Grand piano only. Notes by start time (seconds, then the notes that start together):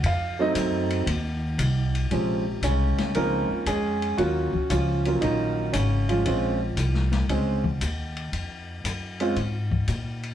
0.06 F5
0.39 F#3 A3 C4 D#4 D#5
2.11 C3 F3 G#3 C4 C#4
2.64 C#3 G#3 C#4
3.15 F3 G#3 A#3 C4 C#4 D#4 F4 A#4
3.67 G#3 C#4 G#4
4.18 F#3 A#3 C#4 F4 F#4
4.70 F3 C#4 F4
5.06 F#3 A#3 C#4 F4
5.21 D#3 F#3 A#3 D#4
5.73 C#3 C#4
6.09 F3 G#3 C#4 F4
6.26 G#3 C4 C#4 F4
7.30 G#3 C4 C#4 G#4
9.20 G#3 C4 C#4 F4